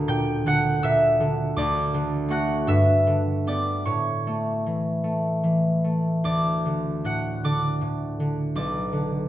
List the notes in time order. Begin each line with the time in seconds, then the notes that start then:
Already playing: D2 D3 A#4 A#5
0.08 A#2 G5 G6
0.46 D3 F#5 F#6
0.83 A#2 E5 E6
1.20 D3
1.57 D2 D5 D6
1.94 D3
2.28 A3 F#4 F#5 F#6
2.67 G2 E5 E6
3.07 D3
3.47 B3 G4 D5 D6
3.86 A2 C#5 C#6
4.27 A3
4.66 E3
5.04 A3
5.44 E3
5.84 A3
6.24 D2 D5 D6
6.65 D3
7.04 A2 F#5 F#6
7.44 D3 D5 D6
7.81 A2
8.20 D3
8.55 B1 D5 D6
8.92 D3